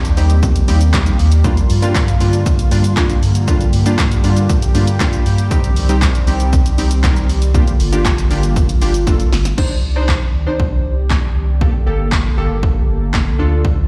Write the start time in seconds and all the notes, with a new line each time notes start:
Already playing: D#3 G3 A#3 G4
0.05 D#2, closed hi-hat, shaker
0.17 D#2 G3 C4 D#4 G4, open hi-hat, shaker
0.30 closed hi-hat, shaker
0.43 kick, shaker
0.56 closed hi-hat, shaker
0.68 D#2 G3 C4 D#4 G4, open hi-hat, shaker
0.81 closed hi-hat, shaker
0.93 G3 C4 D#4 G4, kick, snare, clap, shaker
1.06 closed hi-hat, shaker
1.19 D#2, open hi-hat, shaker
1.32 closed hi-hat, shaker
1.44 D3 G3 A#3 D4 F4, kick, shaker
1.57 closed hi-hat, shaker
1.70 G2, open hi-hat, shaker
1.82 G3 A#3 D4 F4, closed hi-hat, shaker
1.95 kick, snare, clap, shaker
2.08 G2, closed hi-hat, shaker
2.20 G2 G3 A#3 D4 F4, open hi-hat, shaker
2.33 closed hi-hat, shaker
2.46 kick, shaker
2.59 closed hi-hat, shaker
2.71 G2 G3 A#3 D4 F4, open hi-hat, shaker
2.84 closed hi-hat, shaker
2.97 G3 A#3 D4 F4, kick, snare, clap, shaker
3.10 closed hi-hat, shaker
3.22 G2, open hi-hat, shaker
3.35 closed hi-hat, shaker
3.47 G3 A#3 D4 F4 G4, kick, shaker
3.61 closed hi-hat, shaker
3.73 G2, open hi-hat, shaker
3.86 G3 A#3 D4 F4, closed hi-hat, shaker
3.98 kick, snare, clap, shaker
4.11 G2, closed hi-hat, shaker
4.24 G2 G3 A#3 D4 F4, open hi-hat, shaker
4.37 closed hi-hat, shaker
4.49 kick, shaker
4.62 closed hi-hat, shaker
4.75 G2 G3 A#3 D4 F4, open hi-hat, shaker
4.87 closed hi-hat, shaker
5.00 G3 A#3 D4 F4, kick, snare, clap, shaker
5.13 closed hi-hat, shaker
5.26 G2, open hi-hat, shaker
5.38 closed hi-hat, shaker
5.51 D#3 G3 C4 D#4 G4, kick, shaker
5.64 closed hi-hat, shaker
5.76 C2, open hi-hat, shaker
5.89 G3 C4 D#4 G4, closed hi-hat, shaker
6.02 kick, snare, clap, shaker
6.15 C2, closed hi-hat, shaker
6.27 C2 G3 C4 D#4 G4, open hi-hat, shaker
6.40 closed hi-hat, shaker
6.53 kick, shaker
6.66 closed hi-hat, shaker
6.78 C2 G3 C4 D#4 G4, open hi-hat, shaker
6.91 closed hi-hat, shaker
7.03 G3 C4 D#4 A#4, kick, snare, clap, shaker
7.16 closed hi-hat, shaker
7.29 C2, open hi-hat, shaker
7.42 closed hi-hat, shaker
7.54 D3 A#3 D4 F4 G4, kick, shaker
7.67 closed hi-hat, shaker
7.80 G1, open hi-hat, shaker
7.92 A#3 D4 F4 G4, closed hi-hat, shaker
8.05 kick, snare, clap, shaker
8.18 G1, closed hi-hat, shaker
8.30 G1 A#3 D4 F4 G4, open hi-hat, shaker
8.43 closed hi-hat, shaker
8.56 kick, shaker
8.69 closed hi-hat, shaker
8.81 G1 A#3 D4 F4 G4, open hi-hat, shaker
8.94 closed hi-hat, shaker
9.07 A#3 D4 F4 A4, kick, snare, shaker
9.20 closed hi-hat, shaker
9.32 G1, snare, open hi-hat, shaker
9.45 snare, closed hi-hat, shaker
9.58 D#3 C4 D4 D#4 G4 C5 D5, kick, crash
9.83 C2
9.96 D4 D#4 C5
10.09 kick, snare, clap
10.34 C2
10.47 C2 D4 D#4 C5
10.60 kick
10.85 C2
11.10 kick, snare, clap
11.36 C2
11.61 D3 A#3 G4 A4, kick
11.86 G1 A#3 G4 A4
12.12 kick, snare, clap
12.37 G1 A#3 G4 A4
12.50 G1
12.63 kick
12.88 G1
13.14 kick, snare, clap
13.39 D2 F3 D4 F4 A4
13.65 kick